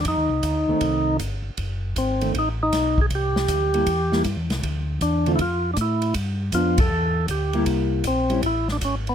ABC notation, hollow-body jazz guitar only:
X:1
M:4/4
L:1/8
Q:"Swing" 1/4=158
K:Cmix
V:1 name="Hollow-body jazz guitar"
z3 [_E,A,C]3 z2 | z3 [^D,A,C] z4 | z3 [G,B,E] z [G,B,E] z2 | z3 [D,A,CF] z4 |
z2 [F,=B,D] z4 [G,_B,E]- | [G,B,E]2 z [G,_DE] z4 |]